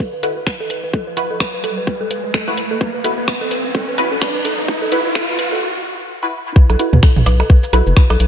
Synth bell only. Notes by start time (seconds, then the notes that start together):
0.13 B4
0.23 A4
0.37 B4
0.47 B4
0.60 A4
0.70 B4
0.84 B4
0.94 A4
1.07 B4
1.17 B4
1.31 A4
1.54 B4
1.64 A4
1.77 B4
1.87 B4
2.01 A4
2.11 B4
2.24 B4
2.34 A4
2.48 B4
2.57 B4
2.71 A4
2.81 B4
2.94 B4
3.04 A4
3.18 B4
3.41 A4
3.51 B4
3.65 B4
3.75 A4
3.88 B4
3.98 B4
4.12 A4
4.21 B4
4.35 B4
4.45 A4
4.59 B4
4.68 B4
4.82 A4
4.92 B4
5.05 B4
5.15 A4
5.29 B4
5.39 B4
5.52 A4
6.56 B4
6.70 A4
6.79 B4
6.93 B4
7.03 A4
7.16 B4
7.26 B4
7.40 A4
7.50 B4
7.63 B4
7.73 A4
7.87 B4
7.97 B4
8.10 A4
8.20 B4